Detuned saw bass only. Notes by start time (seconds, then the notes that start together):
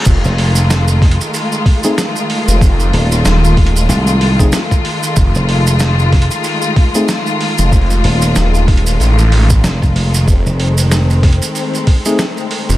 0.06 F1
2.48 F1
3.25 D#1
5.17 F1
7.59 F1
8.36 D#1
9.00 A1
10.28 F1
12.69 F1